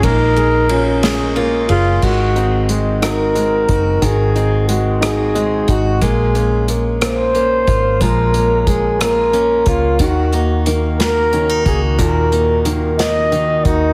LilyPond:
<<
  \new Staff \with { instrumentName = "Flugelhorn" } { \time 6/8 \key bes \minor \tempo 4. = 60 bes'2 r8 f'8 | \key aes \mixolydian ges'4 r8 bes'4. | aes'4 ges'8 aes'4 ges'8 | aes'4 r8 c''4. |
bes'4 aes'8 bes'4 f'8 | ges'4 r8 bes'4 aes'8 | bes'4 r8 ees''4 ees'8 | }
  \new Staff \with { instrumentName = "French horn section" } { \time 6/8 \key bes \minor ees'4 des'4. r8 | \key aes \mixolydian r2. | r2. | r2. |
r2. | r2. | r2. | }
  \new Staff \with { instrumentName = "Steel-string acoustic guitar" } { \time 6/8 \key bes \minor aes8 aes8 des'8 aes8 f'8 des'8 | \key aes \mixolydian <ees ges'>8 c'8 aes8 ges'8 c'8 ges'8 | <ees ges'>8 c'8 aes8 ges'8 c'8 ges'8 | <aes f'>8 des'8 aes8 f'8 des'8 f'8 |
<aes f'>8 des'8 aes8 f'8 des'8 f'8 | <ees ges'>8 ees'8 bes8 ges'8 des'16 ees'16 ges'8 | <ees ges'>8 ees'8 bes8 ges'8 ees'8 ges'8 | }
  \new Staff \with { instrumentName = "Grand piano" } { \time 6/8 \key bes \minor bes8 aes'8 f'8 aes'8 bes8 aes'8 | \key aes \mixolydian aes8 ees'8 aes8 ees'8 aes8 ees'8 | ees8 ees'8 aes8 ees'8 aes8 ees'8 | bes8 bes8 bes8 bes8 bes8 bes8 |
f8 bes8 bes8 bes8 bes8 bes8 | ees8 bes8 ees8 bes8 ees8 bes8 | bes,8 bes8 ees8 bes8 ees8 bes8 | }
  \new Staff \with { instrumentName = "Fingered electric bass" } { \clef bass \time 6/8 \key bes \minor bes,,2~ bes,,8 ges,,8 | \key aes \mixolydian aes,,2~ aes,,8 ges,,8 | aes,,2~ aes,,8 aes,,8 | bes,,2~ bes,,8 aes,,8 |
bes,,2~ bes,,8 des,8 | ees,2~ ees,8 des,8 | ees,2~ ees,8 ees,8 | }
  \new DrumStaff \with { instrumentName = "Drums" } \drummode { \time 6/8 <bd cymr>8 cymr8 cymr8 <cymr sn>8 cymr8 cymr8 | <cymc bd>8 hh8 hh8 <hh ss>8 hh8 <hh bd>8 | <hh bd>8 hh8 hh8 <hh ss>8 hh8 <hh bd>8 | <hh bd>8 hh8 hh8 <hh ss>8 hh8 <hh bd>8 |
<hh bd>8 hh8 <hh bd>8 <hh ss>8 hh8 <hh bd>8 | <hh bd>8 hh8 hh8 <hh sn>8 hh8 <hh bd>8 | <hh bd>8 hh8 hh8 <hh sn>8 hh8 <hh bd>8 | }
>>